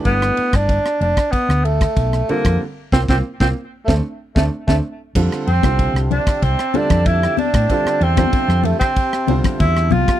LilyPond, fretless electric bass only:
\new Staff \with { instrumentName = "Fretless electric bass" } { \clef bass \time 4/4 \key f \major \tempo 4 = 94 g,,8 r16 g,,8 r16 f,,16 r8 d,8. b,,8 r16 f,16 | r8 c,16 c,16 r16 c,16 r8 d,16 r8 d,16 r16 d,16 r8 | f,16 r16 f,16 c,8 c,8 r16 c,16 r8 f,8. r16 a,16 | r8 e,8 r16 f,8 r8. c,16 r16 e,8 c,16 r16 | }